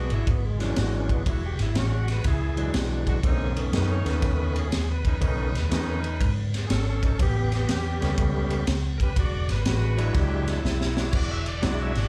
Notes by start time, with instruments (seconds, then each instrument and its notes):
Already playing: horn section G#3 D4 F#4, tonewheel organ B3
0.10 fingered electric bass G#1, tonewheel organ E4, ride
0.27 fingered electric bass G#1, tonewheel organ B3, kick, ride
0.46 tonewheel organ G#3
0.59 tonewheel organ E3 F#3 G#3 C#4 D4, snare, ride
0.76 fingered electric bass G#1, tonewheel organ F#4, snare, ride
0.96 tonewheel organ C#4
1.09 horn section G#3 D4 F#4, tonewheel organ B3, kick, ride
1.26 fingered electric bass E1, horn section G#3 D4 F#4, tonewheel organ E4, kick, ride
1.46 tonewheel organ G4
1.59 fingered electric bass G#1, tonewheel organ E4, snare, ride
1.75 fingered electric bass A1, horn section G#3 D4 F#4, tonewheel organ C#4, snare, ride
1.95 tonewheel organ F#4
2.08 snare, ride
2.12 tonewheel organ B4
2.24 fingered electric bass C#2, tonewheel organ E4 G#4, kick, snare, ride
2.57 tonewheel organ E3 F#3 G#3 D4, ride
2.74 fingered electric bass B1, snare, ride
3.06 horn section G#3 D4 F#4, kick, ride
3.23 fingered electric bass B1, tonewheel organ D3 G#3 A#3 C4, horn section A3 C#4 D#4, kick, ride
3.55 tonewheel organ D#3 A3 B3 C#4, ride
3.72 fingered electric bass F#2, horn section A3 C#4 D#4, snare, ride
3.77 tonewheel organ B4
3.92 tonewheel organ C#5
4.05 fingered electric bass D#2, tonewheel organ D#3 A3 B3 C#4, snare, ride
4.11 tonewheel organ B4
4.22 fingered electric bass D#2, kick, snare, ride
4.56 tonewheel organ G#4, ride
4.72 fingered electric bass D#2, snare, ride
4.91 tonewheel organ B4
5.04 horn section A3 C#4 D#4, kick, ride
5.20 fingered electric bass B1, tonewheel organ D#3 A3 B3 C#4, horn section A3 C#4 D#4, kick, ride
5.54 fingered electric bass D#2, snare, ride
5.70 fingered electric bass E2, tonewheel organ D#3 A3 B3 C#4, horn section A3 C#4 D#4, snare, ride
6.04 ride
6.20 fingered electric bass G#2, kick, ride
6.54 snare, ride
6.67 fingered electric bass G#1, tonewheel organ G#4, snare, ride
6.71 tonewheel organ C#4 A4
6.89 tonewheel organ C#4 A4
7.02 horn section A3 C#4 D#4, tonewheel organ C#4, kick, ride
7.06 tonewheel organ A4
7.19 fingered electric bass A1, horn section B3 C#4 G4, tonewheel organ B3 G4, kick, ride
7.38 tonewheel organ B3 G4
7.52 tonewheel organ B3 G4, snare, ride
7.67 fingered electric bass E2, horn section B3 C#4 G4, tonewheel organ F#4, snare, ride
7.71 tonewheel organ G4
8.01 fingered electric bass C#2, tonewheel organ G3 A3 B3 C#4, snare, ride
8.18 fingered electric bass C#2, kick, ride
8.50 ride
8.67 fingered electric bass C#2, snare, ride
8.98 horn section B3 C#4 G4, tonewheel organ A#4, kick, ride
9.03 tonewheel organ B4
9.16 fingered electric bass E1, horn section G#3 D4 F#4, tonewheel organ D5, kick, ride
9.49 fingered electric bass G#1, tonewheel organ B4, snare, ride
9.65 fingered electric bass A1, horn section G#3 D4 F#4, snare, ride
9.97 tonewheel organ F#3 G#3 D4 E4, ride
10.13 fingered electric bass C#2, tonewheel organ F#4, kick, snare, ride
10.18 tonewheel organ G4
10.48 tonewheel organ E4, snare, ride
10.65 fingered electric bass B1, snare
10.81 snare
10.96 horn section G#3 D4 F#4, snare
11.11 fingered electric bass E1, horn section G#3 D4 E4 F#4, tonewheel organ C#5, kick, crash
11.16 tonewheel organ D5
11.31 tonewheel organ E5
11.46 tonewheel organ D5, ride
11.62 fingered electric bass B1, tonewheel organ F#3 G#3 D4 E4 D5, horn section G#3 D4 E4 F#4, snare, ride
11.81 tonewheel organ E5
11.95 fingered electric bass G#1, tonewheel organ D5, snare, ride